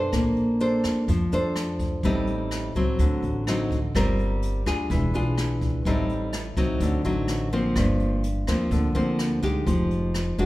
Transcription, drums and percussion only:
0.13 kick, cross-stick, closed hi-hat
0.36 closed hi-hat
0.60 closed hi-hat
0.84 cross-stick, closed hi-hat
1.08 kick, closed hi-hat
1.32 closed hi-hat
1.56 cross-stick, closed hi-hat
1.79 kick, closed hi-hat
2.03 kick, closed hi-hat
2.27 closed hi-hat
2.51 cross-stick, closed hi-hat
2.75 closed hi-hat
2.99 kick, closed hi-hat
3.23 closed hi-hat
3.47 cross-stick, closed hi-hat
3.71 kick, closed hi-hat
3.95 kick, cross-stick, closed hi-hat
4.19 closed hi-hat
4.42 closed hi-hat
4.67 cross-stick
4.90 kick, closed hi-hat
5.14 closed hi-hat
5.38 cross-stick, closed hi-hat
5.61 kick, closed hi-hat
5.85 kick, closed hi-hat
6.09 closed hi-hat
6.33 cross-stick, closed hi-hat
6.57 kick, closed hi-hat
6.80 kick, closed hi-hat
7.04 closed hi-hat
7.28 cross-stick, closed hi-hat
7.52 closed hi-hat
7.76 kick, cross-stick, closed hi-hat
7.99 closed hi-hat
8.23 closed hi-hat
8.47 cross-stick, closed hi-hat
8.71 kick, closed hi-hat
8.95 closed hi-hat
9.19 cross-stick, closed hi-hat
9.43 kick, closed hi-hat
9.67 kick, closed hi-hat
9.91 closed hi-hat
10.14 cross-stick, closed hi-hat
10.39 closed hi-hat

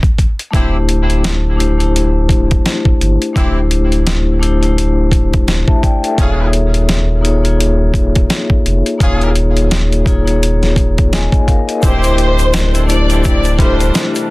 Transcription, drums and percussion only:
0.03 kick, closed hi-hat
0.18 kick, closed hi-hat
0.39 closed hi-hat
0.53 kick, closed hi-hat
0.89 closed hi-hat
1.10 closed hi-hat
1.24 snare, closed hi-hat
1.60 closed hi-hat
1.80 closed hi-hat
1.96 closed hi-hat
2.29 kick, closed hi-hat
2.51 kick, closed hi-hat
2.66 snare, closed hi-hat
2.85 kick
3.01 closed hi-hat
3.22 closed hi-hat
3.36 kick, closed hi-hat
3.71 closed hi-hat
3.92 closed hi-hat
4.07 snare, closed hi-hat
4.43 closed hi-hat
4.63 closed hi-hat
4.78 closed hi-hat
5.12 kick, closed hi-hat
5.33 kick, closed hi-hat
5.48 snare, closed hi-hat
5.68 kick
5.83 kick, closed hi-hat
6.04 closed hi-hat
6.18 kick, closed hi-hat
6.53 closed hi-hat
6.74 closed hi-hat
6.89 snare, closed hi-hat
7.25 closed hi-hat
7.45 closed hi-hat
7.60 closed hi-hat
7.94 kick, closed hi-hat
8.15 kick, closed hi-hat
8.30 snare, closed hi-hat
8.50 kick
8.66 closed hi-hat
8.86 closed hi-hat
9.00 kick, closed hi-hat
9.21 closed hi-hat
9.36 closed hi-hat
9.57 closed hi-hat
9.71 snare, closed hi-hat
9.92 closed hi-hat
10.06 kick, closed hi-hat
10.27 closed hi-hat
10.43 closed hi-hat
10.63 snare, closed hi-hat
10.76 kick, closed hi-hat
10.98 kick, closed hi-hat
11.13 snare, closed hi-hat
11.32 kick, closed hi-hat
11.48 kick, closed hi-hat
11.69 closed hi-hat
11.83 kick, closed hi-hat, shaker
12.03 closed hi-hat, shaker
12.18 closed hi-hat
12.39 closed hi-hat, shaker
12.53 snare, closed hi-hat, shaker
12.75 closed hi-hat, shaker
12.89 closed hi-hat, shaker
13.10 closed hi-hat, shaker
13.24 kick, closed hi-hat, shaker
13.44 closed hi-hat, shaker
13.59 kick, closed hi-hat
13.80 closed hi-hat, shaker
13.95 snare, closed hi-hat, shaker
14.15 closed hi-hat, shaker

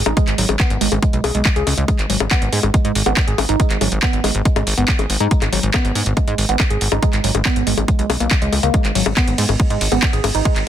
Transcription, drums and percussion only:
0.06 closed hi-hat, high bongo
0.17 kick, closed hi-hat
0.28 clap, closed hi-hat
0.38 open hi-hat
0.49 closed hi-hat, high bongo
0.60 kick, clap, closed hi-hat
0.70 closed hi-hat
0.81 open hi-hat
0.92 closed hi-hat, high bongo
1.03 kick, closed hi-hat
1.13 closed hi-hat
1.24 open hi-hat, high bongo
1.35 closed hi-hat
1.45 kick, clap, closed hi-hat
1.56 closed hi-hat
1.67 open hi-hat, high bongo
1.78 closed hi-hat
1.88 kick, closed hi-hat, high bongo
1.99 clap, closed hi-hat
2.10 open hi-hat
2.20 closed hi-hat, high bongo
2.31 kick, clap, closed hi-hat
2.42 closed hi-hat
2.53 open hi-hat
2.63 closed hi-hat, high bongo
2.74 kick, closed hi-hat
2.85 closed hi-hat
2.95 open hi-hat
3.06 closed hi-hat, high bongo
3.17 kick, clap, closed hi-hat
3.28 closed hi-hat
3.38 open hi-hat, high bongo
3.49 closed hi-hat
3.60 kick, closed hi-hat
3.70 clap, closed hi-hat
3.81 open hi-hat, high bongo
3.92 closed hi-hat
4.03 kick, clap, closed hi-hat
4.13 closed hi-hat
4.24 open hi-hat, high bongo
4.35 closed hi-hat
4.45 kick, closed hi-hat
4.56 closed hi-hat, high bongo
4.67 open hi-hat
4.78 closed hi-hat
4.88 kick, clap, closed hi-hat
4.99 closed hi-hat, high bongo
5.10 open hi-hat
5.20 closed hi-hat
5.31 kick, closed hi-hat
5.42 clap, closed hi-hat, high bongo
5.53 open hi-hat
5.63 closed hi-hat
5.74 kick, clap, closed hi-hat, high bongo
5.85 closed hi-hat
5.95 open hi-hat
6.06 closed hi-hat
6.17 kick, closed hi-hat, high bongo
6.28 closed hi-hat
6.38 open hi-hat
6.49 closed hi-hat
6.60 kick, clap, closed hi-hat, high bongo
6.70 closed hi-hat
6.81 open hi-hat
6.92 closed hi-hat, high bongo
7.03 kick, closed hi-hat
7.13 clap, closed hi-hat
7.24 open hi-hat
7.35 closed hi-hat, high bongo
7.45 kick, clap, closed hi-hat
7.56 closed hi-hat
7.67 open hi-hat
7.78 closed hi-hat, high bongo
7.88 kick, closed hi-hat
7.99 closed hi-hat
8.10 open hi-hat, high bongo
8.20 closed hi-hat
8.31 kick, clap, closed hi-hat
8.42 closed hi-hat
8.53 open hi-hat, high bongo
8.63 closed hi-hat
8.74 kick, closed hi-hat, high bongo
8.85 clap, closed hi-hat
8.95 open hi-hat, ride
9.06 high bongo
9.17 kick, clap, closed hi-hat
9.27 closed hi-hat
9.38 open hi-hat, ride
9.49 closed hi-hat, high bongo
9.60 kick, closed hi-hat
9.70 closed hi-hat
9.81 open hi-hat, ride
9.92 closed hi-hat, high bongo
10.03 kick, clap, closed hi-hat
10.13 closed hi-hat
10.24 open hi-hat, ride, high bongo
10.35 closed hi-hat
10.45 kick, closed hi-hat
10.56 clap, closed hi-hat

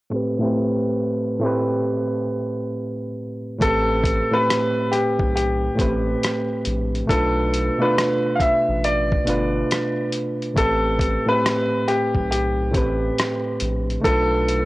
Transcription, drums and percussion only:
3.61 kick, closed hi-hat
4.04 kick, closed hi-hat
4.50 cross-stick, closed hi-hat
4.93 cross-stick, closed hi-hat
5.19 kick
5.37 closed hi-hat
5.79 kick, closed hi-hat
6.23 cross-stick, closed hi-hat
6.65 closed hi-hat
6.95 closed hi-hat
7.09 kick, closed hi-hat
7.54 closed hi-hat
7.98 cross-stick, closed hi-hat
8.40 kick, closed hi-hat
8.84 closed hi-hat
9.12 kick
9.27 closed hi-hat
9.71 cross-stick, closed hi-hat
10.12 closed hi-hat
10.42 closed hi-hat
10.57 kick, closed hi-hat
10.99 kick, closed hi-hat
11.46 cross-stick, closed hi-hat
11.88 cross-stick, closed hi-hat
12.15 kick
12.32 closed hi-hat
12.74 kick, closed hi-hat
13.18 cross-stick, closed hi-hat
13.60 closed hi-hat
13.90 closed hi-hat
14.04 kick, closed hi-hat
14.48 closed hi-hat

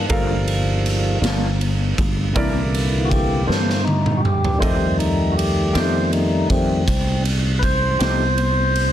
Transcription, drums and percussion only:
0.10 kick, ride
0.48 ride
0.86 ride
1.24 snare, ride
1.61 ride
1.98 kick, ride
2.36 kick, ride
2.74 ride
3.11 kick, ride
3.51 snare
3.70 snare
3.87 high tom
4.06 mid tom
4.25 mid tom
4.45 floor tom
4.62 kick, ride
5.00 ride
5.39 ride
5.75 snare, ride
6.13 ride
6.50 kick, ride
6.88 kick, ride
7.25 ride
7.63 kick, ride
8.00 snare, ride
8.38 ride
8.76 ride

